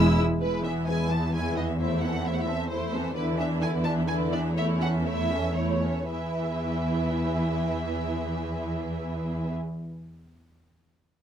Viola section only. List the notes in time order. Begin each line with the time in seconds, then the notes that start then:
Already playing: G#3 E4
0.41 G#3 E4
0.65 E3 B3
0.88 G#3 E4
1.11 E3 B3
1.33 G#3 E4
1.57 E3 B3
1.81 A3 E4
2.04 E3 C4
2.26 A3 E4
2.48 E3 C4
2.71 A3 E4
2.94 E3 C4
3.16 D3 E4
3.38 E3 D4
3.63 D3 E4
3.86 E3 D4
4.08 D3 E4
4.32 E3 D4
4.55 A3 E4
4.80 E3 C#4
5.05 A3 E4
5.31 E3 C#4
5.56 A3 E4
5.83 E3 C#4
6.10 E3 E4